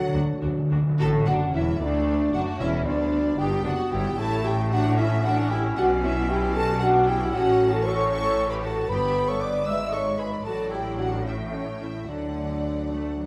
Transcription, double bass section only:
0.14 0.22 D2 medium
0.43 0.51 D2 medium
0.71 0.79 D2 medium
1.00 1.25 A1 medium
1.26 1.53 F#1 medium
1.53 1.79 E1 medium
1.80 2.31 D2 medium
2.32 2.40 F#1 medium
2.59 2.85 E1 medium
2.85 3.38 D2 medium
3.38 3.64 G1 medium
3.64 3.72 F#1 medium
3.91 4.17 G1 medium
4.17 5.72 A1 medium
5.77 7.29 B1 medium
7.33 8.86 A1 medium
8.90 9.65 G1 medium
9.67 10.45 G#1 medium
10.46 12.05 A1 medium
12.08 13.26 D2 soft

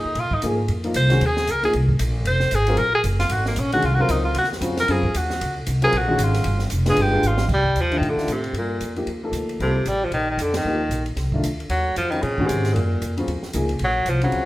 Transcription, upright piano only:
0.42 0.56 F3 medium
0.42 0.57 A#3 medium
0.42 0.57 D#4 medium
0.42 0.58 G#4 medium
0.84 0.94 F3 medium
0.84 0.94 A#3 medium
0.84 0.94 D#4 medium
0.84 0.95 F4 medium
1.09 1.20 D#3 medium
1.09 1.20 G#3 medium
1.09 1.20 C#4 medium
1.09 1.20 F#4 medium
1.62 1.72 F3 medium
1.62 1.73 A#3 medium
1.62 1.73 D#4 medium
1.62 1.73 G#4 medium
2.68 2.77 F#3 medium
2.68 2.78 C4 medium
2.68 2.78 F4 medium
2.68 2.78 A#4 medium
3.73 3.83 D#3 medium
3.73 3.82 G#3 medium
3.73 3.83 C#4 medium
3.73 3.83 F#4 medium
3.98 4.33 F#3 medium
3.98 4.34 C4 medium
3.98 4.34 F4 medium
3.98 4.34 A#4 medium
4.61 4.75 C#3 medium
4.61 4.76 F#3 medium
4.61 4.76 C4 medium
4.61 4.76 F4 medium
4.88 5.02 C#3 medium
4.88 5.03 F#3 medium
4.88 5.03 C4 medium
4.88 5.03 F4 medium
5.82 5.92 F#3 medium
5.82 5.92 C4 medium
5.82 5.92 F4 medium
5.82 5.92 A#4 medium
6.08 6.43 D#3 medium
6.08 6.43 G#3 medium
6.08 6.43 C#4 medium
6.08 6.44 F#4 medium
6.87 7.10 G#3 medium
6.87 7.11 B3 medium
6.87 7.12 D4 medium
6.87 7.12 F4 medium
7.12 7.22 G#3 medium
7.12 7.22 B3 medium
7.12 7.23 D4 medium
7.12 7.23 F4 medium
7.91 8.16 D#3 medium
7.91 8.17 A3 medium
7.91 8.17 D4 medium
7.91 8.17 F4 medium
8.17 8.27 D#3 medium
8.17 8.28 A3 medium
8.17 8.28 D4 medium
8.17 8.28 F4 medium
8.96 9.06 F3 medium
8.96 9.06 A#3 medium
8.96 9.07 D#4 medium
8.96 9.07 G4 medium
9.23 9.58 F3 medium
9.23 9.58 A#3 medium
9.23 9.58 D#4 medium
9.23 9.59 A4 medium
9.61 9.74 G3 medium
9.61 9.75 C4 medium
9.61 9.75 F4 medium
9.61 9.75 A4 medium
10.66 10.80 F3 medium
10.66 10.80 A#3 medium
10.66 10.80 D#4 medium
10.66 10.81 G4 medium
11.34 11.43 D#3 medium
11.34 11.43 A3 medium
11.34 11.44 D4 medium
11.34 11.44 F4 medium
12.12 12.22 C#3 medium
12.12 12.22 F#3 soft
12.12 12.23 C4 soft
12.12 12.23 F4 medium
12.39 12.74 D#3 medium
12.39 12.74 G#3 medium
12.39 12.74 C#4 medium
12.39 12.74 F#4 medium
13.17 13.27 C#3 medium
13.17 13.27 F#3 medium
13.17 13.28 C4 medium
13.17 13.28 F4 medium
13.53 13.68 F3 medium
13.53 13.68 A#3 medium
13.53 13.69 D#4 medium
13.53 13.69 G#4 medium
14.23 14.45 C#3 medium
14.23 14.45 F#3 medium
14.23 14.45 C4 medium
14.23 14.45 F4 medium

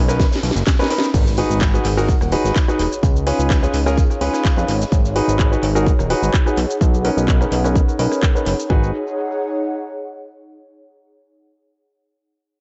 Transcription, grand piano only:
0.08 0.23 C#4 medium
0.08 0.23 D#4 medium
0.08 0.23 A#4 medium
0.08 0.23 B4 loud
0.79 0.88 C#4 loud
0.79 0.88 D#4 medium
0.79 0.88 A#4 medium
0.79 0.88 B4 loud
0.90 1.06 C#4 medium
0.90 1.06 D#4 medium
0.90 1.06 A#4 medium
0.90 1.06 B4 medium
1.38 1.71 D#4 medium
1.38 1.71 F#4 medium
1.38 1.71 G#4 medium
1.38 1.71 B4 medium
1.74 1.88 D#4 medium
1.74 1.88 F#4 medium
1.74 1.88 G#4 medium
1.74 1.88 B4 medium
1.97 2.12 D#4 medium
1.97 2.12 F#4 medium
1.97 2.12 G#4 medium
1.97 2.12 A#4 medium
2.32 2.56 D#4 medium
2.32 2.56 F#4 medium
2.32 2.56 G#4 medium
2.32 2.56 B4 loud
2.68 2.82 D#4 medium
2.68 2.82 F#4 medium
2.68 2.82 G#4 medium
2.68 2.82 B4 medium
3.27 3.60 C#4 medium
3.27 3.60 F4 medium
3.27 3.60 G#4 medium
3.27 3.60 B4 medium
3.63 3.77 C#4 medium
3.63 3.77 F4 medium
3.63 3.77 G#4 medium
3.63 3.77 B4 medium
3.86 4.00 C#4 medium
3.86 4.00 F4 medium
3.86 4.00 G#4 medium
3.86 4.01 A#4 medium
4.21 4.45 C#4 medium
4.21 4.45 F4 medium
4.21 4.45 G#4 medium
4.21 4.45 B4 loud
4.57 4.71 C#4 medium
4.57 4.71 F4 medium
4.57 4.71 G#4 medium
4.57 4.71 B4 medium
5.16 5.49 D#4 medium
5.16 5.49 F#4 medium
5.16 5.49 G#4 medium
5.16 5.49 B4 loud
5.52 5.66 D#4 medium
5.52 5.66 F#4 medium
5.52 5.66 G#4 medium
5.52 5.66 B4 medium
5.75 5.89 D#4 medium
5.75 5.89 F#4 medium
5.75 5.89 G#4 medium
5.75 5.89 A#4 loud
6.10 6.34 D#4 medium
6.10 6.34 F#4 medium
6.10 6.34 G#4 medium
6.10 6.34 B4 loud
6.46 6.56 D#4 medium
6.46 6.56 F#4 medium
6.46 6.56 G#4 medium
6.46 6.56 B4 medium
7.05 7.38 C#4 medium
7.05 7.38 D#4 medium
7.05 7.38 A#4 medium
7.05 7.38 B4 loud
7.41 7.55 C#4 medium
7.41 7.55 D#4 medium
7.41 7.55 A#4 medium
7.41 7.55 B4 medium
7.64 7.78 C#4 medium
7.64 7.78 D#4 medium
7.64 7.78 A#4 medium
7.64 7.78 B4 loud
7.99 8.23 C#4 medium
7.99 8.23 D#4 medium
7.99 8.23 A#4 medium
7.99 8.23 B4 loud
8.35 8.49 C#4 medium
8.35 8.49 D#4 medium
8.35 8.49 A#4 medium
8.35 8.49 B4 medium
8.70 8.88 D#4 medium
8.70 8.88 F#4 medium
8.70 8.88 G#4 medium
8.70 8.88 B4 medium

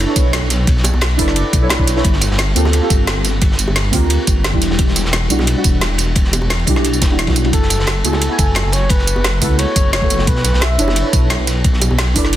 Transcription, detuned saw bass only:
0.16 0.41 B1 loud
0.42 0.66 B1 loud
0.68 0.92 B1 loud
0.93 1.18 B1 medium
1.19 1.44 F#1 loud
1.53 1.78 B1 loud
1.79 2.03 B1 loud
2.05 2.29 G1 loud
2.30 2.55 G1 loud
2.56 2.81 D2 loud
2.90 3.15 G1 loud
3.16 3.40 G1 loud
3.42 3.66 G1 loud
3.68 3.92 G1 loud
3.93 4.18 D2 loud
4.28 4.52 G1 loud
4.54 4.78 E1 loud
4.79 5.03 E1 loud
5.05 5.29 E1 medium
5.30 5.55 B1 medium
5.65 5.89 E1 loud
5.90 6.15 E1 loud
6.16 6.41 E1 loud
6.42 6.66 E1 loud
6.67 7.03 B1 medium
7.02 7.29 E1 medium
7.28 7.52 B1 loud
7.53 7.78 F#1 loud
7.79 8.03 F#1 medium
8.05 8.29 C#2 medium
8.39 8.63 F#1 loud
8.65 8.89 F#1 loud
8.90 9.15 F#1 loud
9.16 9.40 F#1 loud
9.42 9.66 C#2 loud
9.76 10.01 F#1 loud
10.02 10.26 F#1 loud
10.27 10.52 B1 loud
10.53 10.78 B1 medium
10.79 11.03 F#1 medium
11.13 11.38 B1 loud
11.39 11.63 B1 loud
11.65 11.89 B1 loud
11.91 12.15 B1 loud
12.16 12.37 F#1 loud

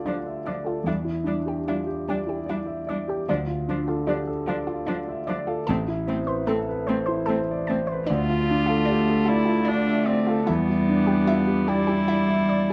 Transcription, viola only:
0.08 0.16 D4 soft
0.46 0.54 D4 soft
0.87 0.95 D4 soft
1.27 1.35 D4 soft
1.68 1.76 D4 soft
2.10 2.18 D4 medium
2.50 2.58 D4 soft
2.89 2.97 D4 soft
3.30 3.38 D4 medium
3.69 3.77 D4 soft
4.09 4.17 D4 medium
4.48 4.56 D4 medium
4.88 4.96 D4 medium
5.29 5.37 D4 medium
5.69 5.77 C4 medium
6.09 6.17 C4 medium
6.49 6.57 C4 medium
6.89 6.97 C4 medium
7.29 7.37 C4 medium
7.70 7.78 C4 medium
8.09 9.30 F4 medium
9.28 9.70 E4 medium
9.68 10.09 D4 medium
10.07 10.48 C4 medium
10.48 11.70 B3 medium
11.69 12.73 E4 medium

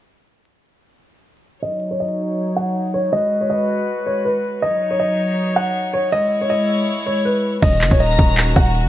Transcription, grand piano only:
1.63 1.89 D#5 medium
1.91 1.98 C#5 medium
2.00 2.53 D#5 medium
2.56 2.92 F#5 medium
2.94 3.09 C#5 medium
3.13 3.40 D#5 loud
3.41 3.48 C#5 medium
3.50 4.03 D#5 medium
4.06 4.21 C#5 medium
4.25 4.60 B4 medium
4.62 4.89 D#5 loud
4.91 4.98 C#5 medium
5.00 5.53 D#5 medium
5.56 5.91 F#5 medium
5.93 6.09 C#5 medium
6.12 6.39 D#5 loud
6.41 6.48 C#5 medium
6.50 7.03 D#5 medium
7.06 7.21 C#5 medium
7.25 7.60 B4 medium
7.62 7.89 D#5 loud
7.91 7.98 C#5 medium
8.00 8.53 D#5 medium
8.56 8.89 F#5 medium

